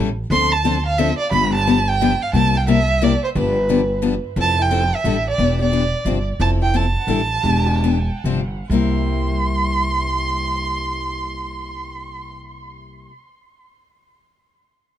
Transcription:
Already playing: A1
0.30 D2 D3 F3 C4 D4 A4 C6
0.52 A5
0.64 D3 F3 C4 D4 A4
0.86 F5
0.98 D3 F3 C4 D4 A4 E5
1.18 D5
1.31 G1 D3 F3 B3 D4 G4 B5
1.55 A5
1.67 D3 F3 B3 D4 G4
1.89 G5
2.01 D3 F3 B3 D4 G4
2.22 F5
2.33 C2 C3 G3 A#3 E4 G4 A5
2.57 G5
2.67 C3 G3 A#3 E4 G4 E5
3.01 C3 G3 A#3 E4 G4 D5
3.24 C5
3.35 G1 D3 F3 B3 D4 G4 B4
3.69 D3 F3 B3 D4 G4
4.02 D3 F3 B3 D4 G4
4.36 F1 F3 C4 E4 A4
4.41 A5
4.58 C4 E4 A4
4.62 G5
4.71 F3 C4 E4 A4
4.95 E5
5.04 A1 D3 G3 D4 E4 A4
5.30 D5
5.38 E1 E3 B3 D4 G4
5.59 B3 D4 G4 D5
5.72 E3 B3 D4 G4
6.05 G1 C3 F3 C4 D4 G4
6.40 F1 F3 C4 E4 A4 A5
6.60 C4 E4 A4 G5
6.74 F3 C4 E4 A4 A5
7.07 A1 D3 G3 D4 E4 A4
7.43 E1 E3 B3 D4 G4
7.66 B3 D4 G4
7.84 E3 B3 D4 G4
8.24 G1 C3 F3 C4 D4 G4
8.70 C2 C3 G3 A#3 E4 C6
8.74 G4

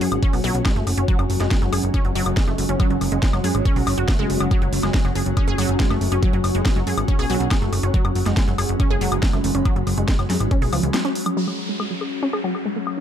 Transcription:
Already playing: F#3 C#4 F#4 F#5
0.01 F#2 G#4, open hi-hat
0.12 G#1, closed hi-hat, high woodblock
0.23 C#4, kick, closed hi-hat
0.33 B1 F#3, open hi-hat, high woodblock
0.44 B1 F#3, open hi-hat
0.55 B1, closed hi-hat
0.65 G#3, kick, snare, closed hi-hat, high woodblock
0.76 F#1 A3, closed hi-hat
0.87 F#1, open hi-hat, high woodblock
0.98 F#1 C#4, closed hi-hat
1.08 F#3 G#3, kick, closed hi-hat
1.19 F#1 F#3, closed hi-hat, high woodblock
1.30 F#1, open hi-hat
1.39 F#1 G#3 C#5, snare, closed hi-hat, high woodblock
1.51 G#3, kick, snare, closed hi-hat
1.62 F#1 F#3, closed hi-hat
1.73 F#1 G#4, open hi-hat, high woodblock
1.83 F#1, closed hi-hat
1.94 C#4, kick, closed hi-hat, high woodblock
2.05 F#1 F#3, closed hi-hat
2.15 F#1 F#3, open hi-hat
2.26 F#1, closed hi-hat, high woodblock
2.37 G#3, kick, snare, closed hi-hat
2.48 F#1 A3, closed hi-hat, high woodblock
2.58 F#1, open hi-hat
2.69 F#1 C#4, closed hi-hat
2.80 F#3, kick, closed hi-hat, high woodblock
2.90 F#1 F#3, closed hi-hat
3.01 F#1, open hi-hat, high woodblock
3.12 F#1 G#3, closed hi-hat
3.23 G#3, kick, snare, closed hi-hat
3.33 F#1 F#3, closed hi-hat, high woodblock
3.44 F#2 G#4, open hi-hat
3.55 G#1, high woodblock
3.65 C#4, kick, closed hi-hat
3.76 B1 F#3, open hi-hat
3.87 F#1 F#3, open hi-hat, high woodblock
3.98 F#1 F#4, closed hi-hat
4.08 A3, kick, snare, closed hi-hat, high woodblock
4.19 F#1 G#3, closed hi-hat
4.30 F#1, open hi-hat
4.40 F#1 F#3, closed hi-hat, high woodblock
4.51 F#3 C#4, kick, closed hi-hat, high woodblock
4.62 F#1 F#3, closed hi-hat
4.73 F#1, open hi-hat
4.82 F#1 G#3 F#5, snare, closed hi-hat, high woodblock
4.94 G#3, kick, snare, closed hi-hat
5.05 F#1 F#3, closed hi-hat, high woodblock
5.15 F#1 G#4, open hi-hat
5.26 F#1, closed hi-hat
5.37 C#4, kick, closed hi-hat, high woodblock
5.48 F#1 G#4, closed hi-hat
5.58 F#1 F#3, open hi-hat, high woodblock
5.69 F#1, closed hi-hat
5.80 G#3, kick, snare, closed hi-hat
5.90 F#1 A3, closed hi-hat, high woodblock
6.01 F#1, open hi-hat
6.12 F#1 C#4, closed hi-hat, high woodblock
6.23 F#3, kick, closed hi-hat
6.33 F#1 F#3, closed hi-hat
6.44 F#1, open hi-hat, high woodblock
6.55 F#1 G#3, closed hi-hat
6.65 G#3, kick, snare, closed hi-hat, high woodblock
6.76 F#1 F#3, closed hi-hat
6.87 F#2 G#4, open hi-hat
6.98 G#1, closed hi-hat, high woodblock
7.08 C#4, kick, closed hi-hat
7.19 B1 G#4, open hi-hat, high woodblock
7.30 B1 F#3, open hi-hat
7.40 B1, closed hi-hat
7.51 G#3, kick, snare, closed hi-hat, high woodblock
7.62 F#1 A3, closed hi-hat
7.73 F#1, open hi-hat, high woodblock
7.83 F#1 C#4, closed hi-hat
7.94 F#3 G#3, kick, closed hi-hat
8.05 F#1 F#3, closed hi-hat, high woodblock
8.15 F#1, open hi-hat
8.24 F#1 G#3 B5, snare, closed hi-hat, high woodblock
8.37 G#3, kick, snare, closed hi-hat
8.48 F#1 F#3, closed hi-hat
8.58 F#1 G#4, open hi-hat, high woodblock
8.69 F#1, closed hi-hat
8.80 C#4, kick, closed hi-hat, high woodblock
8.90 F#1 G#4, closed hi-hat
9.01 F#1 F#3, open hi-hat
9.12 F#1, closed hi-hat, high woodblock
9.23 G#3, kick, snare, closed hi-hat
9.33 F#1 A3, closed hi-hat, high woodblock
9.44 F#1, open hi-hat
9.55 F#1 C#4, closed hi-hat
9.65 F#3, kick, closed hi-hat, high woodblock
9.76 F#1 F#3, closed hi-hat
9.87 F#1, open hi-hat, high woodblock
9.98 F#1 G#3, closed hi-hat
10.08 G#3, kick, snare, closed hi-hat
10.19 F#1 F#3, closed hi-hat, high woodblock
10.30 F#2 G#4, snare, open hi-hat
10.40 G#1, closed hi-hat, high woodblock
10.51 C#4, kick, closed hi-hat
10.62 B1 G#4, open hi-hat
10.73 C#2 F3, open hi-hat, high woodblock
10.83 C#2, closed hi-hat
10.94 F#3, snare, closed hi-hat, high woodblock
11.05 C#4, closed hi-hat
11.15 open hi-hat
11.26 F#3, closed hi-hat, high woodblock
11.37 F#3 C#4, crash, downlifter
11.48 F#3, high woodblock
11.58 closed hi-hat
11.69 G#3
11.80 G#3 C#5, high woodblock
11.90 F#3
12.01 G#4, closed hi-hat, high woodblock
12.12 closed hi-hat
12.23 C#4
12.33 G#4, high woodblock
12.44 F#3, closed hi-hat
12.55 high woodblock
12.65 G#3, closed hi-hat
12.76 A3
12.87 closed hi-hat, high woodblock

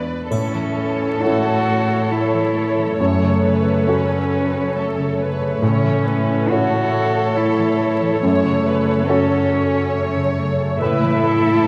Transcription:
Already playing: E2 B3 D4 B4
0.29 A2 C#4 A4 C#5, triangle
0.54 E3
0.78 A3
1.01 C#4
1.22 C#4 E4 F#4 A4 C#5
1.47 C#4
1.68 C#5
1.90 C#4
2.11 A3 E4
2.34 E3
2.56 A3
2.78 E3
2.97 F#2 A3 C#5
3.22 C#3
3.44 A3 B4
3.65 C#4
3.87 C#4 F#4 A4 C#5
4.09 C#4
4.31 C#5
4.53 C#4
4.76 A3 A4
4.98 C#3
5.19 A3 B4
5.41 C#3
5.60 A2 C#4 A4 C#5
5.84 E3
6.06 A3 B4
6.29 C#4
6.50 C#4 E4 F#4 A4 C#5
6.74 E4
6.95 C#6
7.37 A3 E4
7.59 E3
7.80 A3
8.02 E3
8.22 F#2 A3 C#5
8.44 C#3
8.66 A3 B4
9.08 C#4 F#4 A4
9.51 C#5
9.95 A3
10.15 C#3
10.38 A3
10.59 C#3
10.79 A2 A3 E4 B4 E5
11.03 E3
11.24 A3 A4

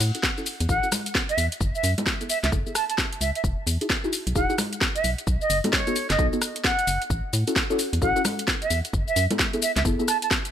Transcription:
0.00 A2, open hi-hat, shaker
0.15 C#4 E4 F#4 A4, closed hi-hat, shaker
0.23 kick, snare, shaker
0.38 C#4 E4 F#4 A4, shaker
0.46 open hi-hat, shaker
0.60 E2, closed hi-hat, shaker
0.69 A1 C#4 E4 F#4 A4 F#5, kick, shaker
0.83 C#4 E4 F#4 A4, shaker
0.92 cross-stick, open hi-hat, high conga, shaker
1.06 closed hi-hat, shaker
1.15 kick, snare, shaker
1.29 E5, closed hi-hat, shaker
1.38 E2, open hi-hat, shaker
1.52 closed hi-hat, shaker
1.61 F#1, kick, shaker
1.75 E5, shaker
1.84 F#2, open hi-hat, shaker
1.98 B3 E4 G#4 A4, closed hi-hat, high conga, shaker
2.06 kick, snare, shaker
2.21 B3 E4 G#4 A4, closed hi-hat, shaker
2.29 E5, open hi-hat, shaker
2.43 C#2 E5, snare, closed hi-hat, shaker
2.52 F#1 B3 E4 G#4 A4, kick, shaker
2.67 B3 E4 G#4 A4, shaker
2.75 A5, cross-stick, open hi-hat, shaker
2.89 A5, closed hi-hat, shaker
2.98 kick, snare, shaker
3.13 closed hi-hat, shaker
3.21 C#2 E5, open hi-hat, shaker
3.35 E5, closed hi-hat, shaker
3.44 E1, kick, shaker
3.67 E2, open hi-hat, shaker
3.81 D#4 E4 F#4 G#4, closed hi-hat, shaker
3.90 kick, snare, shaker
4.04 D#4 E4 F#4 G#4, shaker
4.13 open hi-hat, shaker
4.27 B1, closed hi-hat, shaker
4.35 E1 D#4 E4 F#4 G#4 F#5, kick, shaker
4.50 D#4 E4 F#4 G#4, shaker
4.58 cross-stick, open hi-hat, high conga, shaker
4.73 closed hi-hat, shaker
4.81 kick, snare, shaker
4.95 E5, closed hi-hat, shaker
5.04 B1, open hi-hat, shaker
5.18 closed hi-hat, shaker
5.27 B1, kick, shaker
5.41 D#5, shaker
5.50 F#1, open hi-hat, shaker
5.64 B3 D#4 F#4 A4, closed hi-hat, high conga, shaker
5.73 C#5, kick, snare, shaker
5.87 B3 D#4 F#4 A4, closed hi-hat, shaker
5.96 open hi-hat, shaker
6.10 F#1 D#5, snare, closed hi-hat, shaker
6.19 B1 B3 D#4 F#4 A4, kick, shaker
6.33 B3 D#4 F#4 A4, shaker
6.42 cross-stick, open hi-hat, shaker
6.56 closed hi-hat, shaker
6.64 F#5, kick, snare, shaker
6.79 closed hi-hat, shaker
6.87 F#1, open hi-hat, shaker
7.02 closed hi-hat, shaker
7.10 A1, kick, shaker
7.33 A2, open hi-hat, shaker
7.47 C#4 E4 F#4 A4, closed hi-hat, shaker
7.56 kick, snare, shaker
7.70 C#4 E4 F#4 A4, shaker
7.79 open hi-hat, shaker
7.93 E2, closed hi-hat, shaker
8.02 A1 C#4 E4 F#4 A4 F#5, kick, shaker
8.16 C#4 E4 F#4 A4, shaker
8.25 cross-stick, open hi-hat, high conga, shaker
8.39 closed hi-hat, shaker
8.48 kick, snare, shaker
8.62 E5, closed hi-hat, shaker
8.70 E2, open hi-hat, shaker
8.85 closed hi-hat, shaker
8.93 F#1, kick, shaker
9.08 E5, shaker
9.16 F#2, open hi-hat, shaker
9.30 B3 E4 G#4 A4, closed hi-hat, high conga, shaker
9.39 kick, snare, shaker
9.53 B3 E4 G#4 A4, closed hi-hat, shaker
9.62 E5, open hi-hat, shaker
9.76 C#2 E5, snare, closed hi-hat, shaker
9.85 F#1 B3 E4 G#4 A4, kick, shaker
9.99 B3 E4 G#4 A4, shaker
10.08 A5, cross-stick, open hi-hat, shaker
10.22 A5, closed hi-hat, shaker
10.31 kick, snare, shaker
10.45 closed hi-hat, shaker

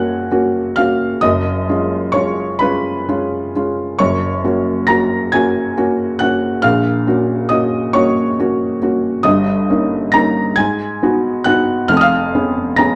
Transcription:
Already playing: F#1 F#2 A#3 C#4 F#4 C#5 F#5 G#5 C#6 F#6 G#6
0.31 A#3 C#4 F#4
0.76 A#3 C#4 F#4 F5 F6
1.21 F#1 F#2 D#5 D#6
1.69 G#3 C#4 F4
2.12 G#3 C#4 F4 C#5 C#6
2.59 G#3 C#4 F4 B4 B5
3.09 G#3 C#4 F4
3.55 G#3 C#4 F4
3.99 F#1 F#2 C#5 C#6
4.44 A#3 C#4 F#4
4.87 A#3 C#4 F#4 A#5 A#6
5.32 A#3 C#4 F#4 G#5 G#6
5.77 A#3 C#4 F#4
6.19 A#3 C#4 F#4 F#5 F#6
6.62 A#1 A#2 F5 F6
7.07 A#3 C#4 F#4
7.49 A#3 C#4 F#4 D#5 D#6
7.93 A#3 C#4 F#4 C#5 C#6
8.39 A#3 C#4 F#4
8.82 A#3 C#4 F#4
9.23 G1 G2 D#5 D#6
9.70 A#3 C#4 D#4
10.12 A#3 C#4 D#4 A#5 A#6
10.56 G#2 G#5 G#6
11.03 B3 D#4 F#4
11.44 B3 D#4 F#4 F#5 F#6
11.88 F1 F2 F6
11.97 D#6
12.01 F5 F6
12.35 B3 C#4 G#4
12.76 B3 C#4 G#4 A#5 A#6

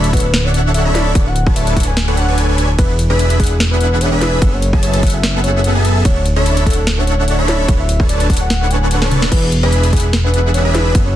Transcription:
Already playing: D1 D4 A4 C#5 E5 B5
0.04 closed hi-hat
0.13 D4 A4 B4 C#5 E5 F#5, kick, closed hi-hat
0.17 closed hi-hat
0.20 closed hi-hat
0.34 snare, closed hi-hat
0.44 D4 A4 C#5 D5 E5 F#5
0.54 closed hi-hat
0.74 E5, closed hi-hat
0.85 D4 A4 C#5 E5 B5
0.95 D5, snare, closed hi-hat
1.15 D1 D4 A4 B4 C#5 F#5, kick, closed hi-hat
1.26 F#5
1.36 closed hi-hat
1.47 D4 A4 B4 C#5 A5, kick
1.56 E5, closed hi-hat
1.67 closed hi-hat
1.77 D4 A4 B4 C#5 F#5, kick, closed hi-hat
1.80 closed hi-hat
1.83 G#5, closed hi-hat
1.97 snare, closed hi-hat
2.08 D4 A4 B4 C#5 F#5
2.17 F#5, closed hi-hat
2.28 D4 A4 B4 C#5 G#5
2.38 closed hi-hat
2.49 D4 A4 B4 C#5 G#5
2.58 closed hi-hat
2.78 D4 G#4 B4 E5 F#5, kick, closed hi-hat, ride
2.99 closed hi-hat
3.10 D4 G#4 B4 E5 B5
3.19 closed hi-hat
3.30 closed hi-hat
3.39 D4 G#4 B4 E5 F#5, kick, closed hi-hat
3.44 closed hi-hat
3.47 closed hi-hat
3.60 snare, closed hi-hat
3.71 D4 G#4 B4 E5 F#5
3.81 closed hi-hat
4.01 C#5, closed hi-hat
4.12 D4 G#4 B4 E5 B5
4.21 B4, snare, closed hi-hat
4.42 F#1 B3 G#4 A4 E5 F#5, kick, closed hi-hat, ride
4.52 C#5
4.62 closed hi-hat
4.73 B3 G#4 A4 E5 A5, kick
4.82 C#5, closed hi-hat
4.94 closed hi-hat
5.03 B3 G#4 A4 E5 F#5, kick, closed hi-hat
5.07 closed hi-hat
5.10 E5, closed hi-hat
5.23 snare, closed hi-hat
5.34 B3 G#4 A4 E5 F#5
5.44 C#5, closed hi-hat
5.64 closed hi-hat
5.75 B3 G#4 A4 E5 A5
5.85 closed hi-hat
6.05 D1 D4 A4 C#5 E5 F#5, kick, closed hi-hat, ride
6.26 closed hi-hat
6.36 D4 A4 C#5 E5 B5
6.46 closed hi-hat
6.57 closed hi-hat
6.66 D4 A4 C#5 E5 F#5, kick, closed hi-hat
6.70 closed hi-hat
6.73 closed hi-hat
6.87 snare, closed hi-hat
6.98 D4 A4 C#5 E5 F#5
7.07 closed hi-hat
7.28 D5, closed hi-hat
7.39 D4 A4 C#5 E5 B5
7.48 C#5, snare, closed hi-hat
7.68 D1 D4 A4 B4 C#5 F#5, kick, closed hi-hat, ride
7.79 E5
7.89 closed hi-hat
8.00 D4 A4 B4 C#5 A5, kick
8.09 D5, closed hi-hat
8.20 closed hi-hat
8.30 D4 A4 B4 C#5 F#5, kick, closed hi-hat
8.33 closed hi-hat
8.37 closed hi-hat
8.41 F#5
8.50 snare, closed hi-hat
8.61 D4 A4 B4 C#5 F#5
8.70 G#5, closed hi-hat
8.91 closed hi-hat
9.02 D4 A4 B4 C#5 A5, snare
9.11 closed hi-hat, mid tom
9.22 snare
9.32 E1 D4 G#4 B4 E5 F#5, kick, closed hi-hat, crash, ride
9.52 closed hi-hat
9.63 D4 G#4 B4 E5 B5
9.72 closed hi-hat
9.83 closed hi-hat
9.93 D4 G#4 B4 E5 F#5, kick, closed hi-hat
9.96 closed hi-hat
10.00 closed hi-hat
10.13 snare, closed hi-hat
10.24 D4 G#4 B4 E5 F#5
10.34 closed hi-hat
10.54 C#5, closed hi-hat
10.65 D4 G#4 B4 E5 B5
10.74 B4, snare, closed hi-hat
10.95 F#1 B3 G#4 A4 E5 F#5, kick, closed hi-hat, ride
11.06 C#5

